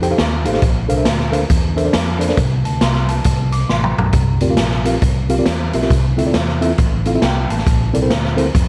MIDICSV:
0, 0, Header, 1, 4, 480
1, 0, Start_track
1, 0, Key_signature, -1, "major"
1, 0, Tempo, 439883
1, 680, Time_signature, 4, 2, 24, 8
1, 9473, End_track
2, 0, Start_track
2, 0, Title_t, "Tine electric piano"
2, 0, Program_c, 0, 4
2, 20, Note_on_c, 0, 63, 86
2, 23, Note_on_c, 0, 67, 85
2, 24, Note_on_c, 0, 69, 89
2, 28, Note_on_c, 0, 72, 87
2, 32, Note_on_c, 0, 79, 105
2, 67, Note_off_c, 0, 63, 0
2, 69, Note_off_c, 0, 67, 0
2, 70, Note_off_c, 0, 69, 0
2, 71, Note_off_c, 0, 72, 0
2, 73, Note_off_c, 0, 79, 0
2, 113, Note_on_c, 0, 63, 86
2, 116, Note_on_c, 0, 67, 69
2, 118, Note_on_c, 0, 69, 70
2, 121, Note_on_c, 0, 72, 69
2, 123, Note_on_c, 0, 77, 86
2, 211, Note_off_c, 0, 63, 0
2, 213, Note_off_c, 0, 67, 0
2, 214, Note_off_c, 0, 69, 0
2, 216, Note_off_c, 0, 72, 0
2, 217, Note_off_c, 0, 77, 0
2, 493, Note_on_c, 0, 63, 85
2, 493, Note_on_c, 0, 67, 69
2, 501, Note_on_c, 0, 69, 67
2, 504, Note_on_c, 0, 77, 94
2, 506, Note_on_c, 0, 72, 62
2, 544, Note_off_c, 0, 63, 0
2, 544, Note_off_c, 0, 67, 0
2, 548, Note_off_c, 0, 69, 0
2, 549, Note_off_c, 0, 77, 0
2, 550, Note_off_c, 0, 72, 0
2, 576, Note_on_c, 0, 63, 74
2, 582, Note_on_c, 0, 67, 75
2, 587, Note_on_c, 0, 69, 81
2, 587, Note_on_c, 0, 77, 88
2, 588, Note_on_c, 0, 72, 79
2, 674, Note_off_c, 0, 63, 0
2, 676, Note_off_c, 0, 67, 0
2, 679, Note_off_c, 0, 69, 0
2, 679, Note_off_c, 0, 77, 0
2, 679, Note_on_c, 0, 46, 75
2, 680, Note_off_c, 0, 72, 0
2, 963, Note_on_c, 0, 69, 73
2, 965, Note_on_c, 0, 62, 85
2, 968, Note_on_c, 0, 70, 76
2, 973, Note_on_c, 0, 72, 79
2, 977, Note_on_c, 0, 77, 102
2, 1019, Note_off_c, 0, 62, 0
2, 1019, Note_off_c, 0, 69, 0
2, 1021, Note_off_c, 0, 70, 0
2, 1023, Note_off_c, 0, 72, 0
2, 1025, Note_off_c, 0, 77, 0
2, 1049, Note_on_c, 0, 62, 80
2, 1058, Note_on_c, 0, 69, 63
2, 1058, Note_on_c, 0, 70, 72
2, 1060, Note_on_c, 0, 72, 71
2, 1066, Note_on_c, 0, 76, 91
2, 1159, Note_off_c, 0, 62, 0
2, 1163, Note_off_c, 0, 69, 0
2, 1163, Note_off_c, 0, 70, 0
2, 1165, Note_off_c, 0, 72, 0
2, 1168, Note_off_c, 0, 76, 0
2, 1413, Note_off_c, 0, 46, 0
2, 1438, Note_on_c, 0, 62, 93
2, 1438, Note_on_c, 0, 69, 79
2, 1444, Note_on_c, 0, 70, 85
2, 1446, Note_on_c, 0, 72, 78
2, 1449, Note_on_c, 0, 77, 96
2, 1544, Note_off_c, 0, 62, 0
2, 1544, Note_off_c, 0, 69, 0
2, 1547, Note_off_c, 0, 70, 0
2, 1548, Note_off_c, 0, 72, 0
2, 1550, Note_off_c, 0, 77, 0
2, 1922, Note_on_c, 0, 62, 91
2, 1924, Note_on_c, 0, 69, 78
2, 1930, Note_on_c, 0, 70, 76
2, 1930, Note_on_c, 0, 72, 82
2, 1931, Note_on_c, 0, 76, 93
2, 1978, Note_off_c, 0, 62, 0
2, 1979, Note_off_c, 0, 69, 0
2, 1981, Note_off_c, 0, 70, 0
2, 1982, Note_off_c, 0, 72, 0
2, 1982, Note_off_c, 0, 76, 0
2, 2010, Note_on_c, 0, 62, 77
2, 2012, Note_on_c, 0, 69, 75
2, 2016, Note_on_c, 0, 70, 68
2, 2019, Note_on_c, 0, 72, 70
2, 2022, Note_on_c, 0, 74, 83
2, 2119, Note_off_c, 0, 62, 0
2, 2120, Note_off_c, 0, 69, 0
2, 2122, Note_off_c, 0, 70, 0
2, 2123, Note_off_c, 0, 72, 0
2, 2125, Note_off_c, 0, 74, 0
2, 2387, Note_on_c, 0, 69, 70
2, 2389, Note_on_c, 0, 62, 76
2, 2394, Note_on_c, 0, 70, 67
2, 2396, Note_on_c, 0, 74, 74
2, 2400, Note_on_c, 0, 72, 71
2, 2450, Note_off_c, 0, 69, 0
2, 2451, Note_off_c, 0, 62, 0
2, 2453, Note_off_c, 0, 70, 0
2, 2454, Note_off_c, 0, 74, 0
2, 2457, Note_off_c, 0, 72, 0
2, 2494, Note_on_c, 0, 62, 82
2, 2495, Note_on_c, 0, 70, 72
2, 2497, Note_on_c, 0, 69, 67
2, 2500, Note_on_c, 0, 74, 85
2, 2501, Note_on_c, 0, 72, 74
2, 2590, Note_on_c, 0, 48, 73
2, 2592, Note_off_c, 0, 62, 0
2, 2592, Note_off_c, 0, 70, 0
2, 2593, Note_off_c, 0, 69, 0
2, 2595, Note_off_c, 0, 72, 0
2, 2595, Note_off_c, 0, 74, 0
2, 2895, Note_on_c, 0, 81, 64
2, 3068, Note_off_c, 0, 81, 0
2, 3071, Note_on_c, 0, 84, 73
2, 3328, Note_off_c, 0, 48, 0
2, 3357, Note_off_c, 0, 84, 0
2, 3370, Note_on_c, 0, 81, 70
2, 3549, Note_on_c, 0, 48, 72
2, 3828, Note_off_c, 0, 81, 0
2, 3846, Note_on_c, 0, 86, 71
2, 4023, Note_off_c, 0, 86, 0
2, 4031, Note_on_c, 0, 84, 72
2, 4287, Note_off_c, 0, 48, 0
2, 4317, Note_off_c, 0, 84, 0
2, 4343, Note_on_c, 0, 82, 58
2, 4528, Note_on_c, 0, 48, 63
2, 4795, Note_off_c, 0, 82, 0
2, 4815, Note_on_c, 0, 60, 85
2, 4816, Note_on_c, 0, 65, 69
2, 4820, Note_on_c, 0, 67, 80
2, 4820, Note_on_c, 0, 74, 91
2, 4822, Note_on_c, 0, 70, 75
2, 4863, Note_off_c, 0, 60, 0
2, 4864, Note_off_c, 0, 65, 0
2, 4866, Note_off_c, 0, 67, 0
2, 4866, Note_off_c, 0, 74, 0
2, 4867, Note_off_c, 0, 70, 0
2, 4907, Note_on_c, 0, 60, 75
2, 4909, Note_on_c, 0, 65, 72
2, 4909, Note_on_c, 0, 67, 66
2, 4915, Note_on_c, 0, 77, 75
2, 4917, Note_on_c, 0, 70, 74
2, 5007, Note_off_c, 0, 60, 0
2, 5008, Note_off_c, 0, 65, 0
2, 5008, Note_off_c, 0, 67, 0
2, 5011, Note_off_c, 0, 77, 0
2, 5012, Note_off_c, 0, 70, 0
2, 5257, Note_off_c, 0, 48, 0
2, 5294, Note_on_c, 0, 60, 89
2, 5295, Note_on_c, 0, 65, 77
2, 5298, Note_on_c, 0, 67, 73
2, 5300, Note_on_c, 0, 70, 80
2, 5303, Note_on_c, 0, 77, 99
2, 5392, Note_off_c, 0, 60, 0
2, 5392, Note_off_c, 0, 65, 0
2, 5393, Note_off_c, 0, 67, 0
2, 5394, Note_off_c, 0, 70, 0
2, 5396, Note_off_c, 0, 77, 0
2, 5775, Note_on_c, 0, 60, 89
2, 5780, Note_on_c, 0, 65, 85
2, 5782, Note_on_c, 0, 70, 76
2, 5783, Note_on_c, 0, 67, 84
2, 5789, Note_on_c, 0, 77, 103
2, 5824, Note_off_c, 0, 60, 0
2, 5826, Note_off_c, 0, 65, 0
2, 5827, Note_off_c, 0, 67, 0
2, 5827, Note_off_c, 0, 70, 0
2, 5830, Note_off_c, 0, 77, 0
2, 5875, Note_on_c, 0, 65, 69
2, 5876, Note_on_c, 0, 60, 85
2, 5878, Note_on_c, 0, 67, 70
2, 5883, Note_on_c, 0, 74, 89
2, 5884, Note_on_c, 0, 70, 73
2, 5971, Note_off_c, 0, 65, 0
2, 5972, Note_off_c, 0, 60, 0
2, 5973, Note_off_c, 0, 67, 0
2, 5975, Note_off_c, 0, 74, 0
2, 5976, Note_off_c, 0, 70, 0
2, 6260, Note_on_c, 0, 60, 73
2, 6262, Note_on_c, 0, 65, 68
2, 6264, Note_on_c, 0, 67, 65
2, 6265, Note_on_c, 0, 70, 68
2, 6274, Note_on_c, 0, 76, 93
2, 6306, Note_off_c, 0, 60, 0
2, 6307, Note_off_c, 0, 65, 0
2, 6308, Note_off_c, 0, 67, 0
2, 6309, Note_off_c, 0, 70, 0
2, 6313, Note_off_c, 0, 76, 0
2, 6355, Note_on_c, 0, 60, 78
2, 6356, Note_on_c, 0, 65, 68
2, 6361, Note_on_c, 0, 67, 80
2, 6362, Note_on_c, 0, 70, 73
2, 6364, Note_on_c, 0, 76, 84
2, 6442, Note_off_c, 0, 60, 0
2, 6443, Note_off_c, 0, 65, 0
2, 6445, Note_off_c, 0, 67, 0
2, 6446, Note_off_c, 0, 70, 0
2, 6447, Note_off_c, 0, 76, 0
2, 6448, Note_on_c, 0, 48, 69
2, 6733, Note_on_c, 0, 64, 85
2, 6734, Note_on_c, 0, 60, 86
2, 6738, Note_on_c, 0, 65, 71
2, 6739, Note_on_c, 0, 69, 76
2, 6746, Note_on_c, 0, 76, 92
2, 6783, Note_off_c, 0, 64, 0
2, 6784, Note_off_c, 0, 60, 0
2, 6786, Note_off_c, 0, 65, 0
2, 6786, Note_off_c, 0, 69, 0
2, 6790, Note_off_c, 0, 76, 0
2, 6821, Note_on_c, 0, 60, 75
2, 6825, Note_on_c, 0, 65, 71
2, 6827, Note_on_c, 0, 64, 69
2, 6834, Note_on_c, 0, 69, 72
2, 6836, Note_on_c, 0, 74, 88
2, 6925, Note_off_c, 0, 60, 0
2, 6927, Note_off_c, 0, 65, 0
2, 6928, Note_off_c, 0, 64, 0
2, 6931, Note_off_c, 0, 69, 0
2, 6932, Note_off_c, 0, 74, 0
2, 7178, Note_off_c, 0, 48, 0
2, 7212, Note_on_c, 0, 60, 90
2, 7213, Note_on_c, 0, 64, 84
2, 7216, Note_on_c, 0, 69, 77
2, 7217, Note_on_c, 0, 65, 76
2, 7223, Note_on_c, 0, 76, 104
2, 7311, Note_off_c, 0, 60, 0
2, 7312, Note_off_c, 0, 64, 0
2, 7313, Note_off_c, 0, 69, 0
2, 7314, Note_off_c, 0, 65, 0
2, 7317, Note_off_c, 0, 76, 0
2, 7701, Note_on_c, 0, 60, 92
2, 7705, Note_on_c, 0, 64, 74
2, 7709, Note_on_c, 0, 65, 82
2, 7709, Note_on_c, 0, 69, 84
2, 7715, Note_on_c, 0, 77, 106
2, 7748, Note_off_c, 0, 60, 0
2, 7750, Note_off_c, 0, 64, 0
2, 7752, Note_off_c, 0, 65, 0
2, 7752, Note_off_c, 0, 69, 0
2, 7755, Note_off_c, 0, 77, 0
2, 7794, Note_on_c, 0, 60, 77
2, 7798, Note_on_c, 0, 64, 68
2, 7798, Note_on_c, 0, 69, 79
2, 7801, Note_on_c, 0, 65, 71
2, 7807, Note_on_c, 0, 76, 85
2, 7892, Note_off_c, 0, 60, 0
2, 7894, Note_off_c, 0, 64, 0
2, 7894, Note_off_c, 0, 69, 0
2, 7894, Note_on_c, 0, 79, 79
2, 7895, Note_off_c, 0, 65, 0
2, 7898, Note_off_c, 0, 76, 0
2, 8171, Note_off_c, 0, 79, 0
2, 8188, Note_on_c, 0, 81, 54
2, 8371, Note_on_c, 0, 46, 79
2, 8640, Note_off_c, 0, 81, 0
2, 8655, Note_on_c, 0, 60, 89
2, 8660, Note_on_c, 0, 69, 78
2, 8661, Note_on_c, 0, 64, 79
2, 8665, Note_on_c, 0, 70, 77
2, 8665, Note_on_c, 0, 74, 90
2, 8706, Note_off_c, 0, 60, 0
2, 8708, Note_off_c, 0, 69, 0
2, 8709, Note_off_c, 0, 64, 0
2, 8711, Note_off_c, 0, 70, 0
2, 8711, Note_off_c, 0, 74, 0
2, 8749, Note_on_c, 0, 60, 76
2, 8753, Note_on_c, 0, 64, 73
2, 8754, Note_on_c, 0, 69, 72
2, 8757, Note_on_c, 0, 70, 73
2, 8759, Note_on_c, 0, 72, 85
2, 8850, Note_off_c, 0, 60, 0
2, 8852, Note_off_c, 0, 64, 0
2, 8853, Note_off_c, 0, 69, 0
2, 8855, Note_off_c, 0, 70, 0
2, 8855, Note_off_c, 0, 72, 0
2, 9102, Note_off_c, 0, 46, 0
2, 9127, Note_on_c, 0, 60, 84
2, 9134, Note_on_c, 0, 64, 85
2, 9134, Note_on_c, 0, 69, 83
2, 9135, Note_on_c, 0, 70, 81
2, 9136, Note_on_c, 0, 72, 95
2, 9231, Note_off_c, 0, 60, 0
2, 9234, Note_off_c, 0, 64, 0
2, 9234, Note_off_c, 0, 69, 0
2, 9235, Note_off_c, 0, 70, 0
2, 9235, Note_off_c, 0, 72, 0
2, 9473, End_track
3, 0, Start_track
3, 0, Title_t, "Fingered electric bass"
3, 0, Program_c, 1, 33
3, 0, Note_on_c, 1, 41, 86
3, 133, Note_off_c, 1, 41, 0
3, 213, Note_on_c, 1, 39, 93
3, 508, Note_off_c, 1, 39, 0
3, 508, Note_on_c, 1, 33, 97
3, 658, Note_off_c, 1, 33, 0
3, 681, Note_on_c, 1, 34, 104
3, 933, Note_off_c, 1, 34, 0
3, 984, Note_on_c, 1, 36, 87
3, 1136, Note_off_c, 1, 36, 0
3, 1157, Note_on_c, 1, 38, 92
3, 1566, Note_off_c, 1, 38, 0
3, 1641, Note_on_c, 1, 40, 93
3, 2048, Note_off_c, 1, 40, 0
3, 2122, Note_on_c, 1, 41, 97
3, 2528, Note_off_c, 1, 41, 0
3, 2596, Note_on_c, 1, 36, 115
3, 2850, Note_off_c, 1, 36, 0
3, 2892, Note_on_c, 1, 38, 90
3, 3048, Note_off_c, 1, 38, 0
3, 3075, Note_on_c, 1, 36, 99
3, 3484, Note_off_c, 1, 36, 0
3, 3554, Note_on_c, 1, 36, 105
3, 3963, Note_off_c, 1, 36, 0
3, 4037, Note_on_c, 1, 33, 91
3, 4290, Note_off_c, 1, 33, 0
3, 4347, Note_on_c, 1, 35, 83
3, 4497, Note_off_c, 1, 35, 0
3, 4514, Note_on_c, 1, 36, 106
3, 4768, Note_off_c, 1, 36, 0
3, 4817, Note_on_c, 1, 38, 89
3, 4971, Note_off_c, 1, 38, 0
3, 5002, Note_on_c, 1, 34, 97
3, 5408, Note_off_c, 1, 34, 0
3, 5483, Note_on_c, 1, 36, 99
3, 5889, Note_off_c, 1, 36, 0
3, 5969, Note_on_c, 1, 40, 94
3, 6218, Note_off_c, 1, 40, 0
3, 6267, Note_on_c, 1, 35, 83
3, 6417, Note_off_c, 1, 35, 0
3, 6443, Note_on_c, 1, 36, 101
3, 6694, Note_off_c, 1, 36, 0
3, 6748, Note_on_c, 1, 38, 88
3, 6898, Note_off_c, 1, 38, 0
3, 6929, Note_on_c, 1, 40, 97
3, 7333, Note_off_c, 1, 40, 0
3, 7410, Note_on_c, 1, 33, 97
3, 7814, Note_off_c, 1, 33, 0
3, 7887, Note_on_c, 1, 36, 93
3, 8138, Note_off_c, 1, 36, 0
3, 8188, Note_on_c, 1, 33, 90
3, 8339, Note_off_c, 1, 33, 0
3, 8368, Note_on_c, 1, 34, 112
3, 8618, Note_off_c, 1, 34, 0
3, 8677, Note_on_c, 1, 36, 100
3, 8825, Note_off_c, 1, 36, 0
3, 8860, Note_on_c, 1, 38, 91
3, 9261, Note_off_c, 1, 38, 0
3, 9332, Note_on_c, 1, 41, 104
3, 9473, Note_off_c, 1, 41, 0
3, 9473, End_track
4, 0, Start_track
4, 0, Title_t, "Drums"
4, 28, Note_on_c, 9, 42, 73
4, 138, Note_off_c, 9, 42, 0
4, 198, Note_on_c, 9, 38, 116
4, 200, Note_on_c, 9, 42, 92
4, 307, Note_off_c, 9, 38, 0
4, 310, Note_off_c, 9, 42, 0
4, 495, Note_on_c, 9, 42, 89
4, 587, Note_on_c, 9, 38, 36
4, 604, Note_off_c, 9, 42, 0
4, 675, Note_on_c, 9, 42, 85
4, 680, Note_on_c, 9, 36, 109
4, 696, Note_off_c, 9, 38, 0
4, 784, Note_off_c, 9, 42, 0
4, 789, Note_off_c, 9, 36, 0
4, 977, Note_on_c, 9, 42, 68
4, 1086, Note_off_c, 9, 42, 0
4, 1148, Note_on_c, 9, 38, 105
4, 1148, Note_on_c, 9, 42, 89
4, 1257, Note_off_c, 9, 38, 0
4, 1257, Note_off_c, 9, 42, 0
4, 1307, Note_on_c, 9, 38, 39
4, 1416, Note_off_c, 9, 38, 0
4, 1452, Note_on_c, 9, 42, 83
4, 1561, Note_off_c, 9, 42, 0
4, 1633, Note_on_c, 9, 42, 97
4, 1637, Note_on_c, 9, 36, 108
4, 1742, Note_off_c, 9, 42, 0
4, 1746, Note_off_c, 9, 36, 0
4, 1938, Note_on_c, 9, 42, 71
4, 2047, Note_off_c, 9, 42, 0
4, 2108, Note_on_c, 9, 38, 124
4, 2110, Note_on_c, 9, 42, 97
4, 2217, Note_off_c, 9, 38, 0
4, 2219, Note_off_c, 9, 42, 0
4, 2411, Note_on_c, 9, 42, 89
4, 2496, Note_on_c, 9, 38, 34
4, 2520, Note_off_c, 9, 42, 0
4, 2588, Note_on_c, 9, 42, 93
4, 2591, Note_on_c, 9, 36, 113
4, 2605, Note_off_c, 9, 38, 0
4, 2697, Note_off_c, 9, 42, 0
4, 2700, Note_off_c, 9, 36, 0
4, 2892, Note_on_c, 9, 42, 73
4, 3001, Note_off_c, 9, 42, 0
4, 3066, Note_on_c, 9, 38, 111
4, 3066, Note_on_c, 9, 42, 79
4, 3175, Note_off_c, 9, 38, 0
4, 3175, Note_off_c, 9, 42, 0
4, 3216, Note_on_c, 9, 38, 39
4, 3325, Note_off_c, 9, 38, 0
4, 3367, Note_on_c, 9, 42, 80
4, 3476, Note_off_c, 9, 42, 0
4, 3538, Note_on_c, 9, 42, 95
4, 3549, Note_on_c, 9, 36, 109
4, 3648, Note_off_c, 9, 42, 0
4, 3658, Note_off_c, 9, 36, 0
4, 3844, Note_on_c, 9, 42, 75
4, 3953, Note_off_c, 9, 42, 0
4, 4029, Note_on_c, 9, 38, 66
4, 4138, Note_off_c, 9, 38, 0
4, 4187, Note_on_c, 9, 45, 73
4, 4296, Note_off_c, 9, 45, 0
4, 4346, Note_on_c, 9, 43, 109
4, 4455, Note_off_c, 9, 43, 0
4, 4502, Note_on_c, 9, 42, 94
4, 4510, Note_on_c, 9, 36, 110
4, 4611, Note_off_c, 9, 42, 0
4, 4619, Note_off_c, 9, 36, 0
4, 4807, Note_on_c, 9, 42, 70
4, 4916, Note_off_c, 9, 42, 0
4, 4985, Note_on_c, 9, 38, 100
4, 4985, Note_on_c, 9, 42, 92
4, 5094, Note_off_c, 9, 38, 0
4, 5094, Note_off_c, 9, 42, 0
4, 5140, Note_on_c, 9, 38, 38
4, 5249, Note_off_c, 9, 38, 0
4, 5297, Note_on_c, 9, 42, 96
4, 5406, Note_off_c, 9, 42, 0
4, 5475, Note_on_c, 9, 42, 91
4, 5479, Note_on_c, 9, 36, 101
4, 5584, Note_off_c, 9, 42, 0
4, 5588, Note_off_c, 9, 36, 0
4, 5778, Note_on_c, 9, 42, 66
4, 5887, Note_off_c, 9, 42, 0
4, 5954, Note_on_c, 9, 38, 116
4, 5956, Note_on_c, 9, 42, 100
4, 6063, Note_off_c, 9, 38, 0
4, 6065, Note_off_c, 9, 42, 0
4, 6256, Note_on_c, 9, 42, 84
4, 6346, Note_on_c, 9, 38, 36
4, 6365, Note_off_c, 9, 42, 0
4, 6443, Note_on_c, 9, 36, 127
4, 6444, Note_on_c, 9, 42, 93
4, 6455, Note_off_c, 9, 38, 0
4, 6552, Note_off_c, 9, 36, 0
4, 6554, Note_off_c, 9, 42, 0
4, 6749, Note_on_c, 9, 42, 77
4, 6858, Note_off_c, 9, 42, 0
4, 6917, Note_on_c, 9, 38, 95
4, 6917, Note_on_c, 9, 42, 83
4, 7026, Note_off_c, 9, 38, 0
4, 7026, Note_off_c, 9, 42, 0
4, 7075, Note_on_c, 9, 38, 35
4, 7184, Note_off_c, 9, 38, 0
4, 7224, Note_on_c, 9, 42, 88
4, 7333, Note_off_c, 9, 42, 0
4, 7398, Note_on_c, 9, 42, 97
4, 7404, Note_on_c, 9, 36, 113
4, 7507, Note_off_c, 9, 42, 0
4, 7513, Note_off_c, 9, 36, 0
4, 7698, Note_on_c, 9, 42, 74
4, 7807, Note_off_c, 9, 42, 0
4, 7878, Note_on_c, 9, 38, 126
4, 7880, Note_on_c, 9, 42, 90
4, 7987, Note_off_c, 9, 38, 0
4, 7989, Note_off_c, 9, 42, 0
4, 8185, Note_on_c, 9, 42, 88
4, 8276, Note_on_c, 9, 38, 34
4, 8294, Note_off_c, 9, 42, 0
4, 8363, Note_on_c, 9, 42, 94
4, 8364, Note_on_c, 9, 36, 111
4, 8385, Note_off_c, 9, 38, 0
4, 8472, Note_off_c, 9, 42, 0
4, 8474, Note_off_c, 9, 36, 0
4, 8670, Note_on_c, 9, 42, 68
4, 8779, Note_off_c, 9, 42, 0
4, 8843, Note_on_c, 9, 38, 106
4, 8843, Note_on_c, 9, 42, 84
4, 8952, Note_off_c, 9, 38, 0
4, 8952, Note_off_c, 9, 42, 0
4, 8998, Note_on_c, 9, 38, 37
4, 9107, Note_off_c, 9, 38, 0
4, 9142, Note_on_c, 9, 42, 90
4, 9251, Note_off_c, 9, 42, 0
4, 9327, Note_on_c, 9, 36, 105
4, 9327, Note_on_c, 9, 42, 88
4, 9436, Note_off_c, 9, 36, 0
4, 9436, Note_off_c, 9, 42, 0
4, 9473, End_track
0, 0, End_of_file